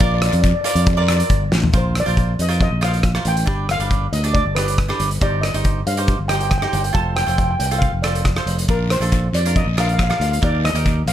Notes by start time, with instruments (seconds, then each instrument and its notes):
0.00 fingered electric bass A#1, cavaquinho F4 A#4 D5, steel pan D5, kick, closed hi-hat, long guiro
0.14 steel pan D5
0.19 steel pan D5, cross-stick, closed hi-hat
0.26 steel pan D5
0.33 fingered electric bass F2, steel pan D5, closed hi-hat
0.42 steel pan D5, kick, closed hi-hat, short guiro
0.48 steel pan D5
0.54 steel pan D5
0.61 cavaquinho F4 A#4, steel pan D5
0.65 cavaquinho D5, steel pan D5, closed hi-hat, short guiro
0.75 fingered electric bass F2, steel pan D5, closed hi-hat
0.84 steel pan D5, kick, closed hi-hat, long guiro
0.94 cavaquinho F4 A#4 D5, steel pan D5
1.01 steel pan D5
1.08 steel pan D5, cross-stick, closed hi-hat, short guiro
1.16 steel pan D5, closed hi-hat
1.30 fingered electric bass G1, kick, closed hi-hat
1.51 fingered electric bass A1, snare, short guiro
1.64 floor tom
1.73 fingered electric bass A#1, cavaquinho F4 A#4 C5, kick, closed hi-hat
1.77 steel pan C5
1.95 cross-stick, closed hi-hat
2.00 steel pan D5
2.06 fingered electric bass A#1, cavaquinho F4 A#4 C5, closed hi-hat
2.17 kick, closed hi-hat
2.39 fingered electric bass F2, steel pan D#5, closed hi-hat
2.48 cavaquinho F4 A#4 C5, closed hi-hat
2.61 steel pan D#5, kick, closed hi-hat
2.71 fingered electric bass A#1
2.81 cavaquinho F4 A#4 C5, steel pan F5, cross-stick, closed hi-hat
2.94 closed hi-hat
3.03 kick, cross-stick, closed hi-hat
3.15 cavaquinho F4 A#4 C5, cross-stick
3.25 fingered electric bass A1, steel pan G5, closed hi-hat
3.37 closed hi-hat
3.46 fingered electric bass G1, cavaquinho D4 G4 B4, kick, closed hi-hat
3.69 steel pan F5, cross-stick, closed hi-hat
3.80 fingered electric bass G1, cavaquinho D4 G4 B4, closed hi-hat
3.91 kick, closed hi-hat
4.12 fingered electric bass D2, steel pan D#5, closed hi-hat
4.24 cavaquinho D4 G4 D5, closed hi-hat
4.34 steel pan D5, kick, closed hi-hat
4.45 fingered electric bass G1
4.55 cavaquinho D4 G4 B4, steel pan B4, cross-stick, closed hi-hat
4.68 closed hi-hat
4.78 kick, cross-stick, closed hi-hat
4.88 cavaquinho D4 G4 B4, cross-stick
5.00 fingered electric bass G1, closed hi-hat
5.11 closed hi-hat
5.21 fingered electric bass G1, cavaquinho D#4 G4 C5, steel pan D5, kick, closed hi-hat
5.41 steel pan D#5, cross-stick, closed hi-hat
5.54 fingered electric bass G1, cavaquinho D#4 G4 C5, closed hi-hat
5.64 kick, closed hi-hat
5.87 fingered electric bass G2, steel pan F5, closed hi-hat
5.97 cavaquinho D#4 G4 C5, closed hi-hat
6.08 kick, closed hi-hat
6.19 fingered electric bass G1
6.28 cavaquinho D#4 G4 C5, steel pan G5, cross-stick, closed hi-hat
6.34 steel pan G5
6.40 steel pan G5, closed hi-hat
6.50 steel pan G5, kick, cross-stick, closed hi-hat
6.58 steel pan G5
6.62 cavaquinho D#4 G4 C5, cross-stick
6.67 steel pan G5
6.73 fingered electric bass G1, steel pan G5, closed hi-hat
6.84 steel pan G5, closed hi-hat
6.93 fingered electric bass F1, cavaquinho F4 A4 C5, steel pan A5, kick, closed hi-hat
7.16 steel pan G5, cross-stick, closed hi-hat
7.24 fingered electric bass F1, cavaquinho F4 A4 C5, steel pan G5
7.28 steel pan G5, closed hi-hat
7.38 steel pan G5, kick, closed hi-hat
7.44 steel pan G5
7.51 steel pan G5
7.59 fingered electric bass C2, steel pan G5, closed hi-hat
7.66 steel pan G5
7.71 cavaquinho F4 A4 C5, closed hi-hat
7.79 steel pan F5, kick, closed hi-hat
7.92 fingered electric bass F1
8.02 cavaquinho F4 A4 C5, steel pan D5, cross-stick, closed hi-hat
8.15 closed hi-hat
8.25 kick, cross-stick, closed hi-hat
8.36 cavaquinho F4 A4 C5, cross-stick
8.46 fingered electric bass F1, closed hi-hat
8.59 closed hi-hat
8.68 fingered electric bass A#1, cavaquinho D4 F4 A#4, steel pan A#4, kick, closed hi-hat, long guiro
8.90 steel pan C5, cross-stick, closed hi-hat, short guiro
9.00 fingered electric bass A#1, cavaquinho D4 F4 A4, closed hi-hat
9.12 kick, closed hi-hat, short guiro
9.33 fingered electric bass F2, steel pan D5, closed hi-hat, short guiro
9.46 cavaquinho D4 F4 A#4, closed hi-hat
9.55 steel pan D#5, kick, closed hi-hat, long guiro
9.66 fingered electric bass A#1
9.77 cavaquinho D4 F4 A#4, steel pan F5, cross-stick, closed hi-hat
9.87 steel pan F5, closed hi-hat
9.94 steel pan F5
9.99 kick, cross-stick, closed hi-hat, short guiro
10.03 steel pan F5
10.10 cavaquinho D4 F4 A#4, steel pan F5, cross-stick
10.17 fingered electric bass D2, steel pan F5, closed hi-hat
10.22 steel pan F5
10.31 steel pan F5, closed hi-hat
10.41 fingered electric bass D#2, cavaquinho D#4 G4 A#4, steel pan D5, kick, closed hi-hat, long guiro
10.64 steel pan D#5, cross-stick, closed hi-hat, short guiro
10.73 fingered electric bass D#2, cavaquinho D#4 G4 A#4, closed hi-hat
10.85 kick, closed hi-hat, short guiro
11.06 fingered electric bass A#1, steel pan F5, closed hi-hat, short guiro